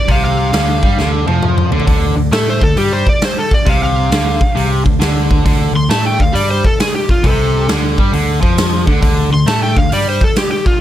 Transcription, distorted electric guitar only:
0, 0, Header, 1, 3, 480
1, 0, Start_track
1, 0, Key_signature, -1, "minor"
1, 0, Tempo, 446429
1, 95, Time_signature, 4, 2, 24, 8
1, 11621, End_track
2, 0, Start_track
2, 0, Title_t, "Distorted electric guitar"
2, 0, Program_c, 0, 30
2, 88, Note_on_c, 0, 48, 101
2, 557, Note_off_c, 0, 48, 0
2, 561, Note_on_c, 0, 50, 106
2, 876, Note_off_c, 0, 50, 0
2, 883, Note_on_c, 0, 55, 97
2, 1046, Note_off_c, 0, 55, 0
2, 1053, Note_on_c, 0, 50, 95
2, 1362, Note_off_c, 0, 50, 0
2, 1366, Note_on_c, 0, 53, 92
2, 1840, Note_off_c, 0, 53, 0
2, 1848, Note_on_c, 0, 50, 102
2, 2002, Note_off_c, 0, 50, 0
2, 2015, Note_on_c, 0, 50, 94
2, 2314, Note_off_c, 0, 50, 0
2, 2327, Note_on_c, 0, 50, 65
2, 2460, Note_off_c, 0, 50, 0
2, 2497, Note_on_c, 0, 57, 98
2, 2804, Note_off_c, 0, 57, 0
2, 2816, Note_on_c, 0, 50, 74
2, 2945, Note_off_c, 0, 50, 0
2, 2982, Note_on_c, 0, 55, 98
2, 3287, Note_off_c, 0, 55, 0
2, 3935, Note_on_c, 0, 48, 101
2, 4411, Note_off_c, 0, 48, 0
2, 4424, Note_on_c, 0, 50, 106
2, 4729, Note_off_c, 0, 50, 0
2, 4897, Note_on_c, 0, 48, 100
2, 5205, Note_off_c, 0, 48, 0
2, 5216, Note_on_c, 0, 50, 72
2, 5346, Note_off_c, 0, 50, 0
2, 5373, Note_on_c, 0, 50, 102
2, 5851, Note_off_c, 0, 50, 0
2, 5863, Note_on_c, 0, 50, 107
2, 6166, Note_off_c, 0, 50, 0
2, 6178, Note_on_c, 0, 50, 69
2, 6307, Note_off_c, 0, 50, 0
2, 6343, Note_on_c, 0, 57, 106
2, 6648, Note_off_c, 0, 57, 0
2, 6656, Note_on_c, 0, 50, 70
2, 6786, Note_off_c, 0, 50, 0
2, 6809, Note_on_c, 0, 55, 102
2, 7122, Note_off_c, 0, 55, 0
2, 7780, Note_on_c, 0, 48, 98
2, 8254, Note_off_c, 0, 48, 0
2, 8258, Note_on_c, 0, 50, 106
2, 8566, Note_off_c, 0, 50, 0
2, 8578, Note_on_c, 0, 55, 105
2, 8735, Note_off_c, 0, 55, 0
2, 8735, Note_on_c, 0, 50, 98
2, 9043, Note_off_c, 0, 50, 0
2, 9047, Note_on_c, 0, 53, 98
2, 9522, Note_off_c, 0, 53, 0
2, 9535, Note_on_c, 0, 50, 98
2, 9678, Note_off_c, 0, 50, 0
2, 9691, Note_on_c, 0, 50, 102
2, 10003, Note_off_c, 0, 50, 0
2, 10016, Note_on_c, 0, 50, 71
2, 10147, Note_off_c, 0, 50, 0
2, 10179, Note_on_c, 0, 57, 103
2, 10486, Note_off_c, 0, 57, 0
2, 10501, Note_on_c, 0, 50, 71
2, 10629, Note_off_c, 0, 50, 0
2, 10672, Note_on_c, 0, 55, 106
2, 10973, Note_off_c, 0, 55, 0
2, 11621, End_track
3, 0, Start_track
3, 0, Title_t, "Muted distorted electric guitar strokes"
3, 4743, Note_on_c, 9, 29, 57
3, 4851, Note_off_c, 9, 29, 0
3, 11621, End_track
0, 0, End_of_file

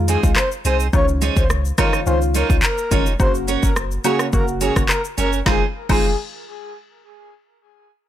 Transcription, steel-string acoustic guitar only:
0, 0, Header, 1, 2, 480
1, 0, Start_track
1, 0, Tempo, 566038
1, 791, Time_signature, 4, 2, 24, 8
1, 6857, End_track
2, 0, Start_track
2, 0, Title_t, "Steel-string acoustic guitar"
2, 0, Program_c, 0, 25
2, 69, Note_on_c, 0, 60, 85
2, 74, Note_on_c, 0, 63, 85
2, 78, Note_on_c, 0, 68, 87
2, 82, Note_on_c, 0, 72, 94
2, 246, Note_off_c, 0, 60, 0
2, 249, Note_off_c, 0, 63, 0
2, 251, Note_off_c, 0, 68, 0
2, 252, Note_off_c, 0, 72, 0
2, 549, Note_on_c, 0, 60, 84
2, 554, Note_on_c, 0, 63, 83
2, 558, Note_on_c, 0, 68, 90
2, 562, Note_on_c, 0, 72, 94
2, 726, Note_off_c, 0, 60, 0
2, 729, Note_off_c, 0, 63, 0
2, 730, Note_off_c, 0, 68, 0
2, 732, Note_off_c, 0, 72, 0
2, 1030, Note_on_c, 0, 56, 97
2, 1035, Note_on_c, 0, 63, 91
2, 1038, Note_on_c, 0, 65, 97
2, 1042, Note_on_c, 0, 73, 96
2, 1206, Note_off_c, 0, 56, 0
2, 1209, Note_off_c, 0, 63, 0
2, 1211, Note_off_c, 0, 65, 0
2, 1213, Note_off_c, 0, 73, 0
2, 1509, Note_on_c, 0, 56, 93
2, 1514, Note_on_c, 0, 63, 100
2, 1517, Note_on_c, 0, 65, 103
2, 1521, Note_on_c, 0, 73, 101
2, 1686, Note_off_c, 0, 56, 0
2, 1688, Note_off_c, 0, 63, 0
2, 1690, Note_off_c, 0, 65, 0
2, 1692, Note_off_c, 0, 73, 0
2, 1988, Note_on_c, 0, 56, 84
2, 1993, Note_on_c, 0, 63, 87
2, 1997, Note_on_c, 0, 65, 94
2, 2001, Note_on_c, 0, 73, 91
2, 2166, Note_off_c, 0, 56, 0
2, 2168, Note_off_c, 0, 63, 0
2, 2170, Note_off_c, 0, 65, 0
2, 2172, Note_off_c, 0, 73, 0
2, 2467, Note_on_c, 0, 56, 88
2, 2472, Note_on_c, 0, 63, 94
2, 2476, Note_on_c, 0, 65, 96
2, 2480, Note_on_c, 0, 73, 97
2, 2645, Note_off_c, 0, 56, 0
2, 2648, Note_off_c, 0, 63, 0
2, 2650, Note_off_c, 0, 65, 0
2, 2652, Note_off_c, 0, 73, 0
2, 2947, Note_on_c, 0, 61, 84
2, 2953, Note_on_c, 0, 66, 86
2, 2957, Note_on_c, 0, 70, 95
2, 2960, Note_on_c, 0, 73, 91
2, 3125, Note_off_c, 0, 61, 0
2, 3128, Note_off_c, 0, 66, 0
2, 3130, Note_off_c, 0, 70, 0
2, 3132, Note_off_c, 0, 73, 0
2, 3429, Note_on_c, 0, 61, 91
2, 3434, Note_on_c, 0, 66, 98
2, 3438, Note_on_c, 0, 70, 96
2, 3442, Note_on_c, 0, 73, 103
2, 3606, Note_off_c, 0, 61, 0
2, 3608, Note_off_c, 0, 66, 0
2, 3611, Note_off_c, 0, 70, 0
2, 3612, Note_off_c, 0, 73, 0
2, 3908, Note_on_c, 0, 61, 89
2, 3913, Note_on_c, 0, 66, 90
2, 3917, Note_on_c, 0, 70, 92
2, 3920, Note_on_c, 0, 73, 92
2, 4085, Note_off_c, 0, 61, 0
2, 4088, Note_off_c, 0, 66, 0
2, 4090, Note_off_c, 0, 70, 0
2, 4092, Note_off_c, 0, 73, 0
2, 4388, Note_on_c, 0, 61, 88
2, 4393, Note_on_c, 0, 66, 82
2, 4397, Note_on_c, 0, 70, 93
2, 4401, Note_on_c, 0, 73, 101
2, 4565, Note_off_c, 0, 61, 0
2, 4568, Note_off_c, 0, 66, 0
2, 4570, Note_off_c, 0, 70, 0
2, 4572, Note_off_c, 0, 73, 0
2, 4629, Note_on_c, 0, 60, 78
2, 4634, Note_on_c, 0, 63, 86
2, 4638, Note_on_c, 0, 68, 92
2, 4642, Note_on_c, 0, 72, 97
2, 4780, Note_off_c, 0, 60, 0
2, 4783, Note_off_c, 0, 63, 0
2, 4785, Note_off_c, 0, 68, 0
2, 4786, Note_off_c, 0, 72, 0
2, 4996, Note_on_c, 0, 60, 87
2, 5000, Note_on_c, 0, 63, 87
2, 5005, Note_on_c, 0, 68, 98
2, 5009, Note_on_c, 0, 72, 97
2, 5135, Note_off_c, 0, 60, 0
2, 5138, Note_off_c, 0, 63, 0
2, 5140, Note_off_c, 0, 68, 0
2, 5142, Note_off_c, 0, 72, 0
2, 6857, End_track
0, 0, End_of_file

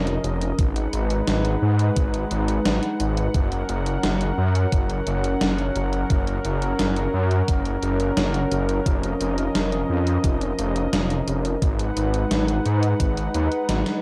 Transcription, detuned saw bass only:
0, 0, Header, 1, 2, 480
1, 0, Start_track
1, 0, Key_signature, 6, "major"
1, 0, Tempo, 689655
1, 408, Time_signature, 4, 2, 24, 8
1, 9757, End_track
2, 0, Start_track
2, 0, Title_t, "Detuned saw bass"
2, 0, Program_c, 0, 39
2, 0, Note_on_c, 0, 29, 84
2, 125, Note_off_c, 0, 29, 0
2, 167, Note_on_c, 0, 29, 102
2, 365, Note_off_c, 0, 29, 0
2, 408, Note_on_c, 0, 32, 97
2, 605, Note_off_c, 0, 32, 0
2, 649, Note_on_c, 0, 32, 78
2, 846, Note_off_c, 0, 32, 0
2, 889, Note_on_c, 0, 32, 96
2, 1086, Note_off_c, 0, 32, 0
2, 1128, Note_on_c, 0, 44, 101
2, 1325, Note_off_c, 0, 44, 0
2, 1368, Note_on_c, 0, 32, 81
2, 1565, Note_off_c, 0, 32, 0
2, 1608, Note_on_c, 0, 32, 87
2, 1805, Note_off_c, 0, 32, 0
2, 1848, Note_on_c, 0, 32, 102
2, 1947, Note_off_c, 0, 32, 0
2, 2089, Note_on_c, 0, 32, 93
2, 2286, Note_off_c, 0, 32, 0
2, 2328, Note_on_c, 0, 30, 95
2, 2526, Note_off_c, 0, 30, 0
2, 2569, Note_on_c, 0, 30, 76
2, 2766, Note_off_c, 0, 30, 0
2, 2807, Note_on_c, 0, 30, 100
2, 3005, Note_off_c, 0, 30, 0
2, 3047, Note_on_c, 0, 42, 96
2, 3245, Note_off_c, 0, 42, 0
2, 3288, Note_on_c, 0, 30, 81
2, 3485, Note_off_c, 0, 30, 0
2, 3527, Note_on_c, 0, 30, 87
2, 3725, Note_off_c, 0, 30, 0
2, 3769, Note_on_c, 0, 30, 83
2, 3966, Note_off_c, 0, 30, 0
2, 4008, Note_on_c, 0, 30, 102
2, 4205, Note_off_c, 0, 30, 0
2, 4248, Note_on_c, 0, 30, 98
2, 4445, Note_off_c, 0, 30, 0
2, 4488, Note_on_c, 0, 30, 80
2, 4685, Note_off_c, 0, 30, 0
2, 4727, Note_on_c, 0, 30, 94
2, 4925, Note_off_c, 0, 30, 0
2, 4967, Note_on_c, 0, 42, 100
2, 5165, Note_off_c, 0, 42, 0
2, 5207, Note_on_c, 0, 30, 86
2, 5405, Note_off_c, 0, 30, 0
2, 5447, Note_on_c, 0, 30, 88
2, 5645, Note_off_c, 0, 30, 0
2, 5687, Note_on_c, 0, 30, 84
2, 5885, Note_off_c, 0, 30, 0
2, 5927, Note_on_c, 0, 30, 102
2, 6125, Note_off_c, 0, 30, 0
2, 6167, Note_on_c, 0, 29, 98
2, 6365, Note_off_c, 0, 29, 0
2, 6406, Note_on_c, 0, 29, 81
2, 6604, Note_off_c, 0, 29, 0
2, 6647, Note_on_c, 0, 29, 101
2, 6845, Note_off_c, 0, 29, 0
2, 6887, Note_on_c, 0, 41, 100
2, 7085, Note_off_c, 0, 41, 0
2, 7128, Note_on_c, 0, 29, 83
2, 7325, Note_off_c, 0, 29, 0
2, 7369, Note_on_c, 0, 29, 83
2, 7566, Note_off_c, 0, 29, 0
2, 7609, Note_on_c, 0, 29, 83
2, 7806, Note_off_c, 0, 29, 0
2, 7848, Note_on_c, 0, 29, 101
2, 8045, Note_off_c, 0, 29, 0
2, 8088, Note_on_c, 0, 32, 95
2, 8285, Note_off_c, 0, 32, 0
2, 8328, Note_on_c, 0, 32, 78
2, 8525, Note_off_c, 0, 32, 0
2, 8568, Note_on_c, 0, 32, 95
2, 8765, Note_off_c, 0, 32, 0
2, 8809, Note_on_c, 0, 44, 108
2, 9006, Note_off_c, 0, 44, 0
2, 9047, Note_on_c, 0, 32, 85
2, 9245, Note_off_c, 0, 32, 0
2, 9288, Note_on_c, 0, 39, 94
2, 9386, Note_off_c, 0, 39, 0
2, 9527, Note_on_c, 0, 32, 95
2, 9626, Note_off_c, 0, 32, 0
2, 9757, End_track
0, 0, End_of_file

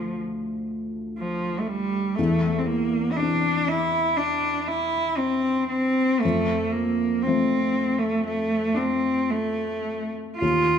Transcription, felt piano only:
0, 0, Header, 1, 2, 480
1, 0, Start_track
1, 0, Tempo, 996678
1, 1051, Time_signature, 4, 2, 24, 8
1, 1535, Tempo, 1016949
1, 2975, Tempo, 1032702
1, 3935, Tempo, 1061947
1, 5058, End_track
2, 0, Start_track
2, 0, Title_t, "Felt piano"
2, 0, Program_c, 0, 0
2, 0, Control_c, 0, 64, 127
2, 0, Note_on_c, 0, 38, 44
2, 0, Note_on_c, 0, 53, 34
2, 0, Note_on_c, 0, 57, 31
2, 0, Note_on_c, 0, 62, 38
2, 1032, Note_off_c, 0, 53, 0
2, 1033, Note_off_c, 0, 38, 0
2, 1034, Note_off_c, 0, 57, 0
2, 1034, Note_off_c, 0, 62, 0
2, 1052, Note_on_c, 0, 40, 47
2, 1058, Control_c, 0, 64, 0
2, 1139, Control_c, 0, 64, 127
2, 1532, Note_on_c, 0, 52, 36
2, 1535, Note_on_c, 0, 60, 33
2, 1535, Note_on_c, 0, 62, 42
2, 2955, Note_off_c, 0, 52, 0
2, 2956, Note_off_c, 0, 40, 0
2, 2956, Note_off_c, 0, 60, 0
2, 2956, Note_off_c, 0, 62, 0
2, 2979, Note_on_c, 0, 41, 51
2, 2980, Control_c, 0, 64, 0
2, 3061, Control_c, 0, 64, 127
2, 3452, Note_on_c, 0, 53, 34
2, 3454, Note_on_c, 0, 57, 33
2, 3454, Note_on_c, 0, 60, 38
2, 4878, Note_off_c, 0, 53, 0
2, 4879, Note_off_c, 0, 57, 0
2, 4879, Note_off_c, 0, 60, 0
2, 4880, Note_off_c, 0, 41, 0
2, 4890, Note_on_c, 0, 39, 42
2, 4901, Control_c, 0, 64, 0
2, 4971, Control_c, 0, 64, 127
2, 5058, Note_off_c, 0, 39, 0
2, 5058, End_track
0, 0, End_of_file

